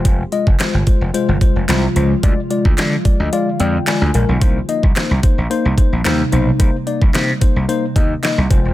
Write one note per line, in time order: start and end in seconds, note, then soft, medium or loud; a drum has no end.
0.00 2.21 C3 medium
0.00 2.21 F3 medium
0.00 0.22 G#3 medium
0.00 4.37 G#3 medium
0.00 0.22 F4 medium
0.00 4.37 F4 medium
0.00 0.22 C5 loud
0.05 0.22 F1 loud
0.05 kick loud
0.05 closed hi-hat loud
0.32 0.48 G#3 medium
0.32 0.48 F4 medium
0.32 0.48 D#5 medium
0.32 closed hi-hat medium
0.47 0.55 F1 loud
0.47 kick medium
0.59 0.75 G#3 medium
0.59 0.76 F4 medium
0.59 0.76 C5 medium
0.59 snare medium
0.59 clap loud
0.59 closed hi-hat medium
0.74 0.82 G1 medium
0.87 1.03 G#3 medium
0.87 1.03 F4 medium
0.87 1.03 C5 medium
0.87 kick loud
0.87 closed hi-hat medium
1.01 1.09 F1 loud
1.14 1.30 G#3 loud
1.14 1.30 F4 loud
1.14 1.30 C5 loud
1.14 closed hi-hat medium
1.28 1.37 G1 medium
1.41 1.57 G#3 medium
1.41 1.57 F4 medium
1.41 1.57 C5 loud
1.41 kick loud
1.41 closed hi-hat medium
1.56 1.64 F1 medium
1.68 1.86 C2 loud
1.68 1.84 G#3 medium
1.68 1.85 F4 medium
1.68 1.85 C5 medium
1.68 snare medium
1.68 clap loud
1.68 closed hi-hat medium
1.96 2.13 C#2 medium
1.96 2.12 G#3 medium
1.96 2.12 F4 medium
1.96 2.12 C5 medium
1.96 closed hi-hat medium
2.23 2.32 D2 loud
2.23 4.39 D3 medium
2.23 4.39 F3 medium
2.23 2.39 G#3 loud
2.23 2.39 F4 loud
2.23 2.39 D5 loud
2.23 kick loud
2.23 closed hi-hat loud
2.50 2.66 G#3 medium
2.50 2.66 F4 medium
2.50 2.66 D5 medium
2.50 closed hi-hat medium
2.65 2.73 D2 medium
2.65 kick medium
2.78 2.95 D3 loud
2.78 2.94 G#3 medium
2.78 2.94 F4 medium
2.78 2.94 D5 medium
2.78 snare medium
2.78 clap loud
2.78 closed hi-hat medium
3.05 3.21 G#3 medium
3.05 3.21 F4 medium
3.05 3.21 D5 medium
3.05 kick loud
3.05 closed hi-hat medium
3.20 3.28 D2 medium
3.20 3.32 D#5 medium
3.33 3.48 G#3 loud
3.33 3.48 F4 loud
3.33 3.49 D5 loud
3.33 3.58 F5 medium
3.33 closed hi-hat medium
3.60 3.77 F2 medium
3.60 3.76 G#3 medium
3.60 3.76 F4 medium
3.60 3.76 D5 loud
3.60 3.85 G5 medium
3.60 closed hi-hat medium
3.87 4.03 G#3 medium
3.87 4.03 F4 medium
3.87 4.03 D5 medium
3.87 4.38 G#5 medium
3.87 snare loud
3.87 clap loud
3.87 closed hi-hat loud
4.01 4.10 D2 medium
4.14 4.23 A#1 medium
4.14 4.30 G#3 medium
4.14 4.30 F4 medium
4.14 4.30 A#4 loud
4.14 closed hi-hat medium
4.29 4.37 B1 medium
4.41 4.59 C2 loud
4.41 8.74 C3 medium
4.41 8.47 G3 medium
4.41 4.57 A#3 loud
4.41 8.47 A#3 medium
4.41 4.57 D#4 medium
4.41 8.47 D#4 medium
4.41 4.57 C5 loud
4.41 kick loud
4.41 closed hi-hat loud
4.68 4.84 A#3 medium
4.68 4.85 D#4 medium
4.68 4.85 D#5 medium
4.68 closed hi-hat medium
4.83 4.91 C2 medium
4.83 kick medium
4.96 5.12 A#3 medium
4.96 5.12 D#4 medium
4.96 5.12 C5 medium
4.96 snare medium
4.96 clap loud
4.96 closed hi-hat medium
5.11 5.19 C2 medium
5.23 5.39 A#3 medium
5.23 5.39 D#4 medium
5.23 5.39 C5 medium
5.23 kick loud
5.23 closed hi-hat medium
5.38 5.46 A#1 medium
5.50 5.66 A#3 loud
5.50 5.66 D#4 loud
5.50 5.67 C5 loud
5.50 closed hi-hat medium
5.65 5.73 C2 medium
5.77 5.93 A#3 medium
5.77 5.94 D#4 medium
5.77 5.94 C5 loud
5.77 kick loud
5.77 closed hi-hat medium
5.92 6.01 A#1 medium
6.05 6.22 D#2 medium
6.05 6.21 A#3 medium
6.05 6.21 D#4 medium
6.05 6.21 C5 medium
6.05 snare loud
6.05 clap loud
6.05 closed hi-hat medium
6.32 6.50 B1 medium
6.32 6.48 A#3 medium
6.32 6.48 D#4 medium
6.32 6.48 C5 medium
6.32 closed hi-hat medium
6.59 6.69 C2 loud
6.59 6.75 A#3 loud
6.59 6.75 D#4 loud
6.59 6.76 C5 loud
6.59 kick loud
6.59 closed hi-hat loud
6.86 7.03 A#3 medium
6.86 7.03 D#4 medium
6.86 7.03 D5 medium
6.86 closed hi-hat medium
7.02 7.10 C2 medium
7.02 kick medium
7.14 7.32 C3 loud
7.14 7.30 A#3 medium
7.14 7.30 D#4 medium
7.14 7.30 C5 medium
7.14 snare loud
7.14 clap loud
7.14 closed hi-hat medium
7.41 7.57 A#3 medium
7.41 7.57 D#4 medium
7.41 7.57 C5 medium
7.41 kick loud
7.41 closed hi-hat medium
7.56 7.64 C2 medium
7.68 7.84 A#3 loud
7.68 7.85 D#4 loud
7.68 7.85 C5 loud
7.68 closed hi-hat medium
7.96 8.13 D#2 medium
7.96 8.12 A#3 medium
7.96 8.12 D#4 medium
7.96 8.12 D#5 loud
7.96 kick loud
7.96 closed hi-hat medium
8.23 8.39 A#3 medium
8.23 8.39 D#4 medium
8.23 8.39 D#5 medium
8.23 snare loud
8.23 clap loud
8.23 closed hi-hat medium
8.38 8.46 C2 medium
8.50 8.60 F1 loud
8.50 8.74 G#3 medium
8.50 8.74 F4 medium
8.50 8.74 C5 loud
8.50 kick medium
8.50 closed hi-hat medium
8.65 8.73 E1 medium